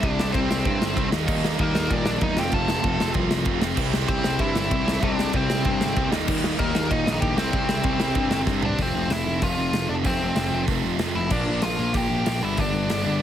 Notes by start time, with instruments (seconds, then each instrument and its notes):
0.00 picked electric bass C2, distorted electric guitar C3 G3 C4 E4, lead electric guitar D4 D5, kick, ride
0.20 snare
0.32 picked electric bass C2, distorted electric guitar C3 G3 C4 E4, lead electric guitar C4 C5, kick, ride
0.50 picked electric bass C2, distorted electric guitar C3 G3 C4 E4, snare
0.64 picked electric bass G2, distorted electric guitar C3 G3 C4 E4, kick, ride
0.81 picked electric bass G1, snare
0.96 picked electric bass C2, distorted electric guitar C3 G3 C4 E4, kick, ride
1.11 picked electric bass D#2, distorted electric guitar D#3 G3 A#3 D#4, snare
1.27 picked electric bass D#2, distorted electric guitar D#3 G3 A#3 D#4, kick, crash
1.44 snare
1.58 picked electric bass D#2, distorted electric guitar D#3 G3 A#3 D#4, lead electric guitar A#3, kick, ride
1.63 lead electric guitar A#4
1.74 picked electric bass D#2, distorted electric guitar D#3 G3 A#3 D#4, snare
1.89 picked electric bass A#2, distorted electric guitar D#3 G3 A#3 D#4, lead electric guitar D4 D5, kick, ride
2.06 picked electric bass A#1, snare
2.21 picked electric bass E2, distorted electric guitar D#3 G3 A#3 D#4, lead electric guitar D#4 D#5, kick, ride
2.37 picked electric bass F1, distorted electric guitar F2 C3 F3 A3 C4 F4, lead electric guitar G4 G5, snare
2.52 picked electric bass F1, distorted electric guitar F2 C3 F3 A3 C4 F4, lead electric guitar A4 A5, kick, ride
2.68 snare
2.83 picked electric bass F1, distorted electric guitar F2 C3 F3 A3 C4 F4, kick, ride
2.98 picked electric bass F1, distorted electric guitar F2 C3 F3 A3 C4 F4, snare
3.14 picked electric bass C2, distorted electric guitar F2 C3 F3 A3 C4 F4, kick, ride
3.31 picked electric bass C2, snare
3.44 picked electric bass F1, distorted electric guitar F2 C3 F3 A3 C4 F4, kick, ride
3.59 distorted electric guitar F2 C3 F3 A3 C4 F4, snare
3.75 picked electric bass C2, distorted electric guitar C3 G3 C4 E4, kick, crash
3.94 snare
4.05 picked electric bass C2, distorted electric guitar C3 G3 C4 E4, lead electric guitar C5, kick, ride
4.09 lead electric guitar C4
4.21 distorted electric guitar C3 G3 C4 E4, snare
4.25 picked electric bass C2
4.36 picked electric bass G2, distorted electric guitar C3 G3 C4 E4, lead electric guitar E5, kick, ride
4.41 lead electric guitar E4
4.56 picked electric bass G1, snare
4.69 picked electric bass C2, distorted electric guitar C3 G3 C4 E4, kick, ride
4.83 distorted electric guitar C3 G3 C4 E4
4.88 snare
4.99 picked electric bass C2, distorted electric guitar C3 G3 C4 E4, lead electric guitar D4, kick, ride
5.04 lead electric guitar D5
5.19 snare
5.33 picked electric bass C2, distorted electric guitar C3 G3 C4 E4, lead electric guitar C4 C5, kick, ride
5.49 picked electric bass C2, distorted electric guitar C3 G3 C4 E4, snare
5.65 picked electric bass G2, distorted electric guitar C3 G3 C4 E4, kick, ride
5.80 picked electric bass G1, snare
5.95 picked electric bass C2, distorted electric guitar C3 G3 C4 E4, kick, ride
6.11 picked electric bass D#2, distorted electric guitar D#3 G3 A#3 D#4, snare
6.28 picked electric bass D#2, distorted electric guitar D#3 G3 A#3 D#4, kick, crash
6.44 snare
6.58 picked electric bass D#2, distorted electric guitar D#3 G3 A#3 D#4, lead electric guitar A#3 A#4, kick, ride
6.75 picked electric bass D#2, distorted electric guitar D#3 G3 A#3 D#4, snare
6.89 picked electric bass A#2, distorted electric guitar D#3 G3 A#3 D#4, lead electric guitar D#4 D#5, kick, ride
7.07 picked electric bass A#1, snare
7.13 lead electric guitar D#4 D#5
7.20 picked electric bass A#1, distorted electric guitar D#3 G3 A#3 D#4, lead electric guitar G4 G5, kick, ride
7.36 picked electric bass C2, distorted electric guitar C3 G3 C4 E4, lead electric guitar C4 C5, snare
7.51 picked electric bass C2, distorted electric guitar C3 G3 C4 E4, kick, ride
7.69 snare
7.82 picked electric bass C2, distorted electric guitar C3 G3 C4 E4, kick, ride
8.00 picked electric bass C2, distorted electric guitar C3 G3 C4 E4, snare
8.14 picked electric bass G2, distorted electric guitar C3 G3 C4 E4, kick, ride
8.31 picked electric bass G1, snare
8.46 picked electric bass G2, distorted electric guitar C3 G3 C4 E4, kick, snare
8.61 distorted electric guitar C3 G3 C4 E4, lead electric guitar D4, floor tom
8.66 lead electric guitar D5
8.76 picked electric bass F1, distorted electric guitar F2 C3 F3 A3 C4, kick, open hi-hat
8.81 distorted electric guitar F3, lead electric guitar C4 C5
8.94 picked electric bass F1
9.10 picked electric bass F1, lead electric guitar E4 E5, snare, open hi-hat
9.25 picked electric bass F1, distorted electric guitar F2 C3 F3
9.41 picked electric bass F1, distorted electric guitar F2 C3 F3 A3 C4, lead electric guitar F4 F5, kick, open hi-hat
9.57 picked electric bass F1
9.72 picked electric bass F1, distorted electric guitar F2 C3 F3, snare, open hi-hat
9.89 picked electric bass F1, lead electric guitar D4 D5
10.03 picked electric bass F1, distorted electric guitar F2 C3 F3 A3 C4, lead electric guitar C4 C5, kick, open hi-hat
10.21 picked electric bass F1
10.36 picked electric bass F1, snare, open hi-hat
10.50 picked electric bass F1, distorted electric guitar F2 C3 F3
10.66 picked electric bass F1, distorted electric guitar F2 C3 F3 A3 C4, kick, open hi-hat
10.84 picked electric bass F1
10.97 distorted electric guitar F2 C3 F3, picked electric bass F2, snare, open hi-hat
11.15 picked electric bass F1, lead electric guitar E4 E5
11.29 picked electric bass A#1, distorted electric guitar A#2 F3 A#3 D4, lead electric guitar D4 D5, kick, crash
11.47 picked electric bass A#1
11.62 picked electric bass A#1, lead electric guitar F4 F5, snare, open hi-hat
11.77 picked electric bass A#1, distorted electric guitar A#2 F3 A#3
11.92 picked electric bass A#1, distorted electric guitar A#2 F3 A#3 D4, lead electric guitar G4, kick, open hi-hat
11.97 lead electric guitar G5
12.10 picked electric bass A#1
12.24 picked electric bass A#1, distorted electric guitar A#2 F3 A#3, snare, open hi-hat
12.40 picked electric bass G1, distorted electric guitar G2 D3 G3 B3 D4, lead electric guitar E4
12.44 lead electric guitar E5
12.57 picked electric bass G1, lead electric guitar D4 D5, kick, open hi-hat
12.74 picked electric bass G1
12.88 picked electric bass G1, distorted electric guitar G2 D3 G3, snare, open hi-hat
13.04 picked electric bass G1, distorted electric guitar G2 D3 G3 B3 D4